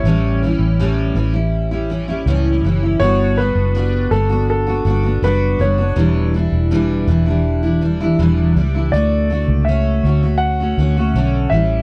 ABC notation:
X:1
M:4/4
L:1/16
Q:1/4=81
K:D
V:1 name="Upright piano"
c2 z12 z2 | c2 B4 A2 A4 B2 c2- | c2 z12 z2 | d4 e4 f6 e2 |]
V:2 name="Steel-string acoustic guitar"
[A,,E,G,CE]2 [E,G,CE]2 [A,,E,G,CE]2 [E,G,CE] [G,CE]2 [G,CE] [E,G,CE] [G,CE] [A,,E,G,CE]2 [E,G,CE] [G,CE] | [G,B,DF]2 [G,B,DF]2 [G,B,DF]2 [G,B,DF] [B,DF]2 [B,DF] [G,B,DF] [B,DF] [G,B,DF]2 [G,B,DF] [B,DF] | [E,,B,,E,G,DE]2 [E,G,DE]2 [E,,B,,E,G,DE]2 [E,G,DE] [E,G,DE]2 [E,G,DE] [E,G,DE] [E,G,DE] [E,,B,,E,G,DE]2 [E,G,DE] [E,G,DE] | [D,A,F]2 [D,A,F]2 [A,CF]2 [D,A,CF] [A,CF]2 [A,CF] [D,A,CF] [A,CF] [D,A,CF]2 [E,G,CE]2 |]
V:3 name="Fingered electric bass" clef=bass
A,,,3 A,,,3 A,,,6 C,,2 F,,,2 | G,,,3 F,,,3 G,,,4 G,,,2 F,,,2 F,,,2 | E,,,3 E,,,3 E,,,6 E,,,2 C,,2 | D,,3 C,,3 D,,4 D,,2 B,,,2 A,,,2 |]